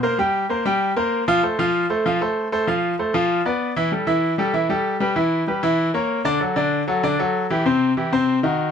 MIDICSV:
0, 0, Header, 1, 2, 480
1, 0, Start_track
1, 0, Tempo, 311042
1, 287, Time_signature, 4, 2, 24, 8
1, 13446, End_track
2, 0, Start_track
2, 0, Title_t, "Grand piano"
2, 0, Program_c, 0, 0
2, 45, Note_on_c, 0, 58, 74
2, 48, Note_on_c, 0, 70, 84
2, 54, Note_on_c, 0, 72, 86
2, 243, Note_off_c, 0, 58, 0
2, 244, Note_off_c, 0, 70, 0
2, 248, Note_off_c, 0, 72, 0
2, 284, Note_on_c, 0, 55, 75
2, 291, Note_on_c, 0, 67, 87
2, 294, Note_on_c, 0, 79, 81
2, 679, Note_off_c, 0, 55, 0
2, 683, Note_off_c, 0, 67, 0
2, 685, Note_off_c, 0, 79, 0
2, 764, Note_on_c, 0, 58, 76
2, 773, Note_on_c, 0, 70, 67
2, 775, Note_on_c, 0, 72, 76
2, 962, Note_off_c, 0, 58, 0
2, 968, Note_off_c, 0, 70, 0
2, 968, Note_off_c, 0, 72, 0
2, 1010, Note_on_c, 0, 55, 90
2, 1010, Note_on_c, 0, 67, 80
2, 1016, Note_on_c, 0, 79, 86
2, 1402, Note_off_c, 0, 55, 0
2, 1402, Note_off_c, 0, 67, 0
2, 1406, Note_off_c, 0, 79, 0
2, 1488, Note_on_c, 0, 58, 76
2, 1491, Note_on_c, 0, 70, 88
2, 1498, Note_on_c, 0, 72, 78
2, 1881, Note_off_c, 0, 58, 0
2, 1883, Note_off_c, 0, 70, 0
2, 1887, Note_off_c, 0, 72, 0
2, 1972, Note_on_c, 0, 53, 88
2, 1975, Note_on_c, 0, 65, 95
2, 1981, Note_on_c, 0, 77, 97
2, 2167, Note_off_c, 0, 53, 0
2, 2169, Note_off_c, 0, 65, 0
2, 2172, Note_off_c, 0, 77, 0
2, 2207, Note_on_c, 0, 57, 68
2, 2212, Note_on_c, 0, 69, 77
2, 2219, Note_on_c, 0, 72, 74
2, 2404, Note_off_c, 0, 57, 0
2, 2407, Note_off_c, 0, 69, 0
2, 2411, Note_off_c, 0, 72, 0
2, 2450, Note_on_c, 0, 53, 84
2, 2453, Note_on_c, 0, 65, 86
2, 2458, Note_on_c, 0, 77, 87
2, 2843, Note_off_c, 0, 53, 0
2, 2844, Note_off_c, 0, 65, 0
2, 2847, Note_off_c, 0, 77, 0
2, 2928, Note_on_c, 0, 57, 81
2, 2934, Note_on_c, 0, 69, 76
2, 2936, Note_on_c, 0, 72, 74
2, 3124, Note_off_c, 0, 57, 0
2, 3128, Note_off_c, 0, 69, 0
2, 3129, Note_off_c, 0, 72, 0
2, 3174, Note_on_c, 0, 53, 87
2, 3178, Note_on_c, 0, 65, 78
2, 3186, Note_on_c, 0, 77, 81
2, 3368, Note_off_c, 0, 53, 0
2, 3370, Note_off_c, 0, 65, 0
2, 3375, Note_off_c, 0, 77, 0
2, 3413, Note_on_c, 0, 57, 73
2, 3415, Note_on_c, 0, 69, 81
2, 3426, Note_on_c, 0, 72, 72
2, 3804, Note_off_c, 0, 57, 0
2, 3805, Note_off_c, 0, 69, 0
2, 3812, Note_off_c, 0, 72, 0
2, 3893, Note_on_c, 0, 57, 73
2, 3894, Note_on_c, 0, 69, 82
2, 3901, Note_on_c, 0, 72, 85
2, 4087, Note_off_c, 0, 57, 0
2, 4088, Note_off_c, 0, 69, 0
2, 4092, Note_off_c, 0, 72, 0
2, 4126, Note_on_c, 0, 53, 77
2, 4134, Note_on_c, 0, 65, 76
2, 4138, Note_on_c, 0, 77, 86
2, 4520, Note_off_c, 0, 53, 0
2, 4525, Note_off_c, 0, 65, 0
2, 4527, Note_off_c, 0, 77, 0
2, 4614, Note_on_c, 0, 57, 76
2, 4619, Note_on_c, 0, 69, 68
2, 4623, Note_on_c, 0, 72, 68
2, 4808, Note_off_c, 0, 57, 0
2, 4811, Note_off_c, 0, 69, 0
2, 4813, Note_off_c, 0, 72, 0
2, 4848, Note_on_c, 0, 53, 92
2, 4851, Note_on_c, 0, 65, 86
2, 4858, Note_on_c, 0, 77, 80
2, 5241, Note_off_c, 0, 53, 0
2, 5243, Note_off_c, 0, 65, 0
2, 5247, Note_off_c, 0, 77, 0
2, 5331, Note_on_c, 0, 59, 83
2, 5337, Note_on_c, 0, 71, 73
2, 5341, Note_on_c, 0, 74, 80
2, 5722, Note_off_c, 0, 59, 0
2, 5726, Note_off_c, 0, 71, 0
2, 5728, Note_off_c, 0, 74, 0
2, 5809, Note_on_c, 0, 52, 93
2, 5815, Note_on_c, 0, 64, 85
2, 5817, Note_on_c, 0, 76, 87
2, 6004, Note_off_c, 0, 52, 0
2, 6008, Note_off_c, 0, 64, 0
2, 6009, Note_off_c, 0, 76, 0
2, 6046, Note_on_c, 0, 55, 69
2, 6049, Note_on_c, 0, 67, 64
2, 6056, Note_on_c, 0, 69, 68
2, 6243, Note_off_c, 0, 55, 0
2, 6245, Note_off_c, 0, 67, 0
2, 6248, Note_off_c, 0, 69, 0
2, 6277, Note_on_c, 0, 52, 84
2, 6280, Note_on_c, 0, 64, 85
2, 6284, Note_on_c, 0, 76, 88
2, 6674, Note_off_c, 0, 52, 0
2, 6676, Note_off_c, 0, 64, 0
2, 6679, Note_off_c, 0, 76, 0
2, 6762, Note_on_c, 0, 55, 80
2, 6770, Note_on_c, 0, 67, 83
2, 6775, Note_on_c, 0, 69, 86
2, 6960, Note_off_c, 0, 55, 0
2, 6965, Note_off_c, 0, 67, 0
2, 6968, Note_off_c, 0, 69, 0
2, 7000, Note_on_c, 0, 52, 82
2, 7004, Note_on_c, 0, 64, 81
2, 7009, Note_on_c, 0, 76, 82
2, 7199, Note_off_c, 0, 52, 0
2, 7202, Note_off_c, 0, 64, 0
2, 7204, Note_off_c, 0, 76, 0
2, 7242, Note_on_c, 0, 55, 77
2, 7250, Note_on_c, 0, 67, 82
2, 7252, Note_on_c, 0, 69, 78
2, 7637, Note_off_c, 0, 55, 0
2, 7642, Note_off_c, 0, 67, 0
2, 7643, Note_off_c, 0, 69, 0
2, 7721, Note_on_c, 0, 55, 88
2, 7726, Note_on_c, 0, 67, 76
2, 7729, Note_on_c, 0, 71, 78
2, 7920, Note_off_c, 0, 55, 0
2, 7923, Note_off_c, 0, 67, 0
2, 7924, Note_off_c, 0, 71, 0
2, 7960, Note_on_c, 0, 52, 89
2, 7963, Note_on_c, 0, 64, 86
2, 7967, Note_on_c, 0, 76, 77
2, 8356, Note_off_c, 0, 52, 0
2, 8358, Note_off_c, 0, 64, 0
2, 8360, Note_off_c, 0, 76, 0
2, 8446, Note_on_c, 0, 55, 65
2, 8454, Note_on_c, 0, 67, 68
2, 8459, Note_on_c, 0, 71, 76
2, 8643, Note_off_c, 0, 55, 0
2, 8647, Note_off_c, 0, 67, 0
2, 8650, Note_off_c, 0, 71, 0
2, 8686, Note_on_c, 0, 52, 94
2, 8694, Note_on_c, 0, 64, 87
2, 8697, Note_on_c, 0, 76, 87
2, 9079, Note_off_c, 0, 52, 0
2, 9084, Note_off_c, 0, 64, 0
2, 9086, Note_off_c, 0, 76, 0
2, 9167, Note_on_c, 0, 58, 75
2, 9173, Note_on_c, 0, 70, 80
2, 9176, Note_on_c, 0, 73, 81
2, 9560, Note_off_c, 0, 58, 0
2, 9564, Note_off_c, 0, 70, 0
2, 9565, Note_off_c, 0, 73, 0
2, 9640, Note_on_c, 0, 50, 88
2, 9644, Note_on_c, 0, 62, 92
2, 9648, Note_on_c, 0, 74, 96
2, 9839, Note_off_c, 0, 50, 0
2, 9842, Note_off_c, 0, 62, 0
2, 9844, Note_off_c, 0, 74, 0
2, 9882, Note_on_c, 0, 54, 66
2, 9885, Note_on_c, 0, 66, 76
2, 9887, Note_on_c, 0, 69, 68
2, 10080, Note_off_c, 0, 54, 0
2, 10082, Note_off_c, 0, 66, 0
2, 10084, Note_off_c, 0, 69, 0
2, 10122, Note_on_c, 0, 50, 92
2, 10127, Note_on_c, 0, 62, 86
2, 10132, Note_on_c, 0, 74, 78
2, 10517, Note_off_c, 0, 50, 0
2, 10520, Note_off_c, 0, 62, 0
2, 10523, Note_off_c, 0, 74, 0
2, 10609, Note_on_c, 0, 54, 79
2, 10612, Note_on_c, 0, 66, 85
2, 10617, Note_on_c, 0, 69, 80
2, 10805, Note_off_c, 0, 54, 0
2, 10806, Note_off_c, 0, 66, 0
2, 10809, Note_off_c, 0, 69, 0
2, 10853, Note_on_c, 0, 50, 92
2, 10857, Note_on_c, 0, 62, 86
2, 10860, Note_on_c, 0, 74, 86
2, 11047, Note_off_c, 0, 50, 0
2, 11049, Note_off_c, 0, 62, 0
2, 11051, Note_off_c, 0, 74, 0
2, 11095, Note_on_c, 0, 54, 77
2, 11099, Note_on_c, 0, 66, 81
2, 11104, Note_on_c, 0, 69, 84
2, 11485, Note_off_c, 0, 54, 0
2, 11488, Note_off_c, 0, 66, 0
2, 11491, Note_off_c, 0, 69, 0
2, 11579, Note_on_c, 0, 52, 90
2, 11584, Note_on_c, 0, 64, 81
2, 11586, Note_on_c, 0, 67, 86
2, 11771, Note_off_c, 0, 52, 0
2, 11774, Note_off_c, 0, 64, 0
2, 11775, Note_off_c, 0, 67, 0
2, 11813, Note_on_c, 0, 48, 90
2, 11817, Note_on_c, 0, 60, 84
2, 11825, Note_on_c, 0, 72, 82
2, 12204, Note_off_c, 0, 48, 0
2, 12206, Note_off_c, 0, 60, 0
2, 12211, Note_off_c, 0, 72, 0
2, 12300, Note_on_c, 0, 52, 76
2, 12301, Note_on_c, 0, 64, 73
2, 12306, Note_on_c, 0, 67, 72
2, 12491, Note_off_c, 0, 52, 0
2, 12492, Note_off_c, 0, 64, 0
2, 12495, Note_off_c, 0, 67, 0
2, 12535, Note_on_c, 0, 48, 81
2, 12540, Note_on_c, 0, 60, 90
2, 12543, Note_on_c, 0, 72, 93
2, 12925, Note_off_c, 0, 48, 0
2, 12928, Note_off_c, 0, 60, 0
2, 12930, Note_off_c, 0, 72, 0
2, 13012, Note_on_c, 0, 51, 80
2, 13020, Note_on_c, 0, 63, 78
2, 13024, Note_on_c, 0, 66, 88
2, 13404, Note_off_c, 0, 51, 0
2, 13408, Note_off_c, 0, 63, 0
2, 13411, Note_off_c, 0, 66, 0
2, 13446, End_track
0, 0, End_of_file